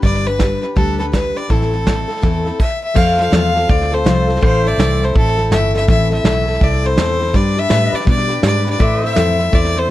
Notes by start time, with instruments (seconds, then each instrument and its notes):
0.02 fingered electric bass G1, steel-string acoustic guitar G3 D4 G4 B4, fiddle D5, kick, snare
0.15 snare
0.25 steel-string acoustic guitar D4 G4 B4, fiddle B4, snare
0.39 steel-string acoustic guitar G3 D4 G4 B4, kick, snare, hi-hat pedal
0.61 steel-string acoustic guitar D4 G4 B4, snare
0.76 fingered electric bass D2, steel-string acoustic guitar G3 D4 G4 B4, fiddle A4, kick, snare
0.99 steel-string acoustic guitar D4 G4 B4, fiddle A4, snare
1.12 steel-string acoustic guitar G3 G4, fiddle B4, kick, snare, hi-hat pedal
1.35 steel-string acoustic guitar D4 G4 B4, fiddle D5, snare
1.49 fingered electric bass A1, steel-string acoustic guitar A2 E3 A3 C4 E4 A4, fiddle A4, kick, snare
1.62 snare
1.72 steel-string acoustic guitar A3 C4 E4 A4, snare
1.85 steel-string acoustic guitar A3 C4 E4 A4, kick, snare, hi-hat pedal
2.08 steel-string acoustic guitar A3 C4 E4 A4, snare
2.17 snare
2.21 fingered electric bass E2, steel-string acoustic guitar A2 E3 A3 C4 E4 A4, kick, snare
2.45 steel-string acoustic guitar A3 C4 E4 A4, snare
2.60 fiddle E5, kick, crash
2.84 fiddle E5
2.94 fingered electric bass F2, steel-string acoustic guitar F3 A3 C4 F4 A4, pedal steel guitar C5 F5, fiddle F5, kick, snare, crash
3.18 steel-string acoustic guitar C4 F4 A4, fiddle F5, snare
3.31 fingered electric bass E2, steel-string acoustic guitar F3 A3 C4 F4 A4, snare, hi-hat pedal
3.53 steel-string acoustic guitar C4 F4 A4, snare
3.68 fingered electric bass D2, steel-string acoustic guitar A3 C4 F4 A4, fiddle D5, kick, snare
3.82 snare
3.92 steel-string acoustic guitar C4 F4 A4, fiddle C5, snare
4.04 fingered electric bass C2, steel-string acoustic guitar F3 A3 C4 F4 A4, snare, hi-hat pedal
4.27 steel-string acoustic guitar C4 F4 A4, snare
4.36 snare
4.41 fingered electric bass A1, steel-string acoustic guitar A2 E3 A3 C4 E4 A4, pedal steel guitar C5 F5, fiddle C5, kick, snare
4.64 steel-string acoustic guitar A3 C4 E4 A4, fiddle D5, pedal steel guitar E5, snare
4.78 fingered electric bass C2, steel-string acoustic guitar A2 E3 A3 C4 E4 A4, snare, hi-hat pedal
5.01 steel-string acoustic guitar A3 C4 E4 A4, fiddle C5, snare
5.14 fingered electric bass A1, steel-string acoustic guitar A3 C4 E4 A4, fiddle A4, kick, snare
5.28 snare
5.37 steel-string acoustic guitar A3 C4 E4 A4, snare
5.51 fingered electric bass G1, steel-string acoustic guitar A2 E3 A3 C4 E4 A4, fiddle E5, snare, hi-hat pedal
5.74 steel-string acoustic guitar A3 C4 E4 A4, fiddle E5, snare
5.82 snare
5.88 fingered electric bass A1, steel-string acoustic guitar A2 E3 A3 C4 E4 A4, fiddle E5, kick, snare
6.10 steel-string acoustic guitar A3 C4 E4 A4, fiddle E5, snare
6.24 fingered electric bass B1, steel-string acoustic guitar A2 E3 A3 C4 E4 A4, snare, hi-hat pedal
6.46 steel-string acoustic guitar A3 C4 E4 A4, snare
6.54 snare
6.60 fingered electric bass C2, steel-string acoustic guitar A3 C4 E4 A4, fiddle D5, kick, snare
6.72 snare
6.83 steel-string acoustic guitar A3 C4 E4 A4, fiddle C5, snare
6.97 fingered electric bass E2, steel-string acoustic guitar A2 E3 A3 C4 E4 A4, snare, hi-hat pedal
7.19 steel-string acoustic guitar A3 C4 E4 A4, snare
7.28 snare
7.33 fingered electric bass G2, steel-string acoustic guitar G3 D4 G4 B4, fiddle D5, kick, snare
7.56 steel-string acoustic guitar D4 G4 B4, fiddle E5, snare
7.69 fingered electric bass A2, steel-string acoustic guitar G3 D4 G4 B4, pedal steel guitar B4 E5, snare, hi-hat pedal
7.92 steel-string acoustic guitar D4 G4 B4, fiddle D5, pedal steel guitar D5, muted fingered electric bass stroke, snare
8.00 snare
8.05 fingered electric bass B2, steel-string acoustic guitar G3 D4 G4 B4, fiddle D5, kick, snare
8.18 snare
8.28 steel-string acoustic guitar D4 G4 B4, snare
8.42 fingered electric bass G#2, steel-string acoustic guitar G3 D4 G4 B4, snare, hi-hat pedal
8.46 fiddle D5
8.64 steel-string acoustic guitar D4 G4 B4, snare
8.70 fiddle D5, snare
8.78 steel-string acoustic guitar A2 E3 A3 C4 E4 C5, fingered electric bass A2, pedal steel guitar B4 D5, fiddle E5, kick, snare
9.01 steel-string acoustic guitar A3 C4 E4 C5, pedal steel guitar C5, snare
9.06 fiddle E5, pedal steel guitar E5
9.15 fingered electric bass F2, steel-string acoustic guitar A2 E3 A3 C4 E4 C5, snare, hi-hat pedal
9.38 steel-string acoustic guitar A3 C4 E4 C5, snare
9.51 fingered electric bass E2, steel-string acoustic guitar A3 C4 E4 C5, fiddle D5, kick, snare
9.65 snare
9.74 steel-string acoustic guitar A3 C4 E4 C5, snare
9.79 fiddle C5